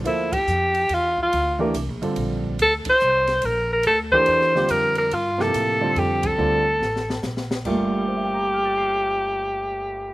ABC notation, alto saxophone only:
X:1
M:3/4
L:1/8
Q:"Swing" 1/4=142
K:Gdor
V:1 name="Alto saxophone"
E G3 F F- | F z4 z | A c3 B B | A c3 B B |
F A3 G A- | A4 z2 | G6- | G6 |]